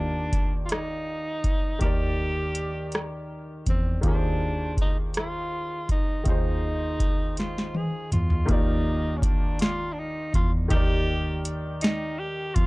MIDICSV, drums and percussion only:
0, 0, Header, 1, 2, 480
1, 0, Start_track
1, 0, Key_signature, -3, "major"
1, 0, Tempo, 740741
1, 1177, Time_signature, 6, 3, 24, 8
1, 8208, End_track
2, 0, Start_track
2, 0, Title_t, "Drums"
2, 211, Note_on_c, 9, 36, 73
2, 213, Note_on_c, 9, 42, 70
2, 276, Note_off_c, 9, 36, 0
2, 278, Note_off_c, 9, 42, 0
2, 448, Note_on_c, 9, 42, 58
2, 468, Note_on_c, 9, 37, 88
2, 513, Note_off_c, 9, 42, 0
2, 533, Note_off_c, 9, 37, 0
2, 934, Note_on_c, 9, 36, 74
2, 934, Note_on_c, 9, 42, 50
2, 999, Note_off_c, 9, 36, 0
2, 999, Note_off_c, 9, 42, 0
2, 1171, Note_on_c, 9, 42, 50
2, 1174, Note_on_c, 9, 36, 78
2, 1236, Note_off_c, 9, 42, 0
2, 1239, Note_off_c, 9, 36, 0
2, 1652, Note_on_c, 9, 42, 72
2, 1717, Note_off_c, 9, 42, 0
2, 1892, Note_on_c, 9, 42, 48
2, 1911, Note_on_c, 9, 37, 83
2, 1957, Note_off_c, 9, 42, 0
2, 1976, Note_off_c, 9, 37, 0
2, 2375, Note_on_c, 9, 36, 70
2, 2375, Note_on_c, 9, 42, 55
2, 2440, Note_off_c, 9, 36, 0
2, 2440, Note_off_c, 9, 42, 0
2, 2613, Note_on_c, 9, 42, 49
2, 2616, Note_on_c, 9, 36, 85
2, 2678, Note_off_c, 9, 42, 0
2, 2680, Note_off_c, 9, 36, 0
2, 3093, Note_on_c, 9, 36, 84
2, 3096, Note_on_c, 9, 42, 62
2, 3158, Note_off_c, 9, 36, 0
2, 3161, Note_off_c, 9, 42, 0
2, 3332, Note_on_c, 9, 42, 58
2, 3351, Note_on_c, 9, 37, 87
2, 3397, Note_off_c, 9, 42, 0
2, 3416, Note_off_c, 9, 37, 0
2, 3817, Note_on_c, 9, 36, 67
2, 3817, Note_on_c, 9, 42, 52
2, 3882, Note_off_c, 9, 36, 0
2, 3882, Note_off_c, 9, 42, 0
2, 4053, Note_on_c, 9, 42, 46
2, 4056, Note_on_c, 9, 36, 85
2, 4117, Note_off_c, 9, 42, 0
2, 4121, Note_off_c, 9, 36, 0
2, 4535, Note_on_c, 9, 36, 80
2, 4537, Note_on_c, 9, 42, 65
2, 4599, Note_off_c, 9, 36, 0
2, 4602, Note_off_c, 9, 42, 0
2, 4777, Note_on_c, 9, 42, 52
2, 4793, Note_on_c, 9, 38, 40
2, 4842, Note_off_c, 9, 42, 0
2, 4858, Note_off_c, 9, 38, 0
2, 4913, Note_on_c, 9, 38, 39
2, 4977, Note_off_c, 9, 38, 0
2, 5019, Note_on_c, 9, 48, 64
2, 5084, Note_off_c, 9, 48, 0
2, 5260, Note_on_c, 9, 45, 70
2, 5262, Note_on_c, 9, 42, 57
2, 5325, Note_off_c, 9, 45, 0
2, 5327, Note_off_c, 9, 42, 0
2, 5379, Note_on_c, 9, 43, 67
2, 5444, Note_off_c, 9, 43, 0
2, 5498, Note_on_c, 9, 42, 53
2, 5500, Note_on_c, 9, 36, 103
2, 5563, Note_off_c, 9, 42, 0
2, 5564, Note_off_c, 9, 36, 0
2, 5976, Note_on_c, 9, 36, 95
2, 5981, Note_on_c, 9, 42, 84
2, 6041, Note_off_c, 9, 36, 0
2, 6046, Note_off_c, 9, 42, 0
2, 6216, Note_on_c, 9, 42, 56
2, 6235, Note_on_c, 9, 38, 97
2, 6281, Note_off_c, 9, 42, 0
2, 6300, Note_off_c, 9, 38, 0
2, 6699, Note_on_c, 9, 36, 78
2, 6701, Note_on_c, 9, 42, 60
2, 6764, Note_off_c, 9, 36, 0
2, 6766, Note_off_c, 9, 42, 0
2, 6936, Note_on_c, 9, 42, 55
2, 6939, Note_on_c, 9, 36, 101
2, 7001, Note_off_c, 9, 42, 0
2, 7004, Note_off_c, 9, 36, 0
2, 7420, Note_on_c, 9, 42, 80
2, 7485, Note_off_c, 9, 42, 0
2, 7654, Note_on_c, 9, 42, 64
2, 7674, Note_on_c, 9, 38, 110
2, 7719, Note_off_c, 9, 42, 0
2, 7739, Note_off_c, 9, 38, 0
2, 8138, Note_on_c, 9, 36, 88
2, 8138, Note_on_c, 9, 42, 64
2, 8203, Note_off_c, 9, 36, 0
2, 8203, Note_off_c, 9, 42, 0
2, 8208, End_track
0, 0, End_of_file